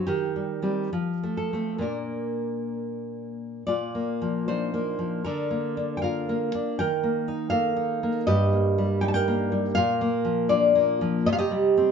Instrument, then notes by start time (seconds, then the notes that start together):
nylon-string guitar
0.07 D#3 G4
0.36 G3
0.62 G3 C4
0.93 F3
1.23 A3
1.37 A4
1.53 A3 C4
1.78 A#2 A#3 D4 A#4
3.67 A#2 F4 D5
3.95 A#3
4.22 F3
4.48 D4 D#4 C5
4.74 A#3
4.99 F3
5.24 D3 D4 A#4
5.51 A#3
5.77 D4
5.97 G5
6.02 F4 A#4 F5
6.29 A#3
6.55 D4
6.79 D#3 A#4 G5
7.03 A#3
7.28 D#4
7.50 A#3 A4 F5
7.76 D#4
8.03 A#3
8.27 G2 G4 D#5
8.53 A#3
8.78 G3
9.01 D#4 G5
9.08 A5
9.14 A#4 G5
9.28 A#3
9.52 G3
9.75 A#2 A#4 F5
10.01 A#3
10.25 F3
10.49 D4 F4 D5
10.75 A#3
11.01 F3
11.26 C3 D#5
11.33 F5
11.38 G4 D#5
11.51 G3
11.77 C4